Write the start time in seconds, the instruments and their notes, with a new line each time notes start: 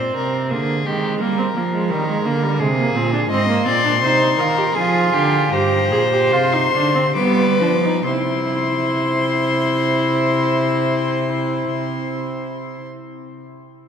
Already playing: cello A#2, viola C4, violin C5
0.16 cello C3, violin A#4
0.51 cello D3, viola A#3, violin G#4
0.86 cello D#3, viola G#3, violin G4
1.20 cello G3, viola A#3, violin A#4
1.38 viola C4
1.55 cello F3, viola A#3
1.73 viola G#3
1.90 cello D#3, viola G3, violin A#4
2.08 viola G#3
2.24 cello D3, viola A#3
2.43 viola G3
2.60 cello C3, viola G#3, violin G#4
2.78 viola A#3
2.94 cello A#2, viola C4
3.13 viola D4
3.30 cello G#2, viola C4, violin D#5 C6
3.48 viola A#3
3.66 cello A#2, viola C4, violin D5
3.84 viola D4
4.02 cello C3, viola D#4, violin C5
4.38 cello D#3, viola F4, violin A#4
4.57 viola G4
4.75 cello F3, viola F4, violin G#4 G#5
5.13 cello D3, violin G4
5.52 cello G2, viola G4, violin C5 A#5
5.91 cello A#2, viola G#4
6.12 viola G4
6.31 cello C3, viola F4, violin C6
6.52 viola D#4
6.73 cello D3, viola D4
6.95 viola C4
7.16 cello G3, viola B3, violin B4 D6
7.60 cello F3, viola D4
7.83 viola D#4
8.05 cello C3, viola E4, violin C5 C6